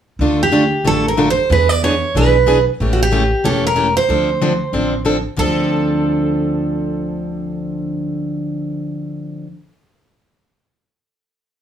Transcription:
0.19 upright bass D2, steel-string acoustic guitar D3 A3 D4 F4 A4
0.43 steel-string acoustic guitar G4
0.52 steel-string acoustic guitar D3 A3 D4 F4 A4
0.84 upright bass A1, steel-string acoustic guitar D3 A3 D4 F4 A4
1.08 steel-string acoustic guitar A#4
1.17 steel-string acoustic guitar D3 A3 D4 F4 A4
1.30 steel-string acoustic guitar C5
1.50 upright bass E2, steel-string acoustic guitar E3 B3 D4 G#4 B4
1.69 steel-string acoustic guitar D5
1.83 steel-string acoustic guitar E3 B3 D4 G#4 C#5
2.14 upright bass B1, steel-string acoustic guitar E3 B3 D4 G#4 B4
2.46 steel-string acoustic guitar E3 B3 D4 G#4
2.80 upright bass A1, steel-string acoustic guitar C#3 E3 A3 C#4 G4
2.93 steel-string acoustic guitar F#4
3.03 steel-string acoustic guitar G4
3.11 steel-string acoustic guitar C#3 E3 A3 C#4 G4
3.44 upright bass E1, steel-string acoustic guitar C#3 E3 A3 C#4 G4 A4
3.67 steel-string acoustic guitar A#4
3.76 steel-string acoustic guitar C#3 E3 A3 C#4 G4
3.97 steel-string acoustic guitar C5
4.09 upright bass D2, steel-string acoustic guitar D3 F3 C4 D4 A4
4.42 steel-string acoustic guitar D3 F3 C4 D4 A4
4.73 upright bass A1, steel-string acoustic guitar D3 F3 C4 D4 A4
5.05 steel-string acoustic guitar D3 F3 C4 D4 A4
5.37 upright bass D2, steel-string acoustic guitar D3 F3 C4 D4 A4

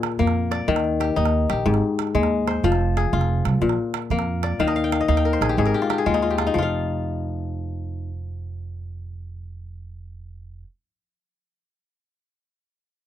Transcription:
Already playing: kora A#2 F4 G#4
0.03 calabash click
0.12 calabash click
0.19 upright bass F2, kora A#3, calabash thump
0.27 calabash click
0.51 kora D5, calabash click
0.68 upright bass D#2, kora D#3, calabash thump
0.76 calabash click
0.84 calabash click
1.00 kora G4, calabash click
1.16 upright bass D#2, kora D#4, calabash thump, calabash click
1.25 calabash click
1.50 upright bass A#1, kora G4, calabash click
1.66 upright bass G#1, kora G#2, calabash thump
1.74 calabash click
1.99 calabash click
2.07 calabash click
2.15 upright bass D#2, kora G#3, calabash thump
2.23 calabash click
2.48 kora C5, calabash click
2.64 upright bass F1, kora F3, calabash thump
2.72 calabash click
2.81 calabash click
2.97 kora G#4, calabash click
3.13 upright bass F1, kora F4, calabash thump, calabash click
3.21 calabash click
3.45 upright bass C2, calabash click
3.61 upright bass A#1, kora A#2, calabash thump
3.69 calabash click
3.94 calabash click
4.02 calabash click
4.10 upright bass F2, kora A#3, calabash thump
4.19 calabash click
4.43 kora D5, calabash click
4.59 upright bass D#2, kora D#3 F5, calabash thump, calabash click
4.67 kora D#5, calabash click
4.76 kora F5, calabash click
4.84 kora G5
4.92 kora F5, calabash click
5.01 kora D#5, calabash click
5.08 upright bass D#2, kora D#4 F5, calabash thump, calabash click
5.17 kora G5, calabash click
5.25 kora A#4, calabash click
5.33 kora C5
5.41 upright bass A#1, kora G#4, calabash click
5.49 kora G4, calabash click
5.57 upright bass G#1, kora G#2 G#4, calabash thump
5.66 kora A#4, calabash click
5.74 kora G4
5.82 kora F4
5.90 kora G4, calabash click
5.98 kora G#4
6.06 upright bass D#2, kora G#3 F4, calabash thump
6.14 kora D#4, calabash click
6.22 kora F4, calabash click
6.31 kora G4
6.38 kora F4, calabash click
6.47 kora D#4, calabash click
6.54 upright bass F1, kora F3, calabash thump
6.58 kora F4
6.63 kora F5

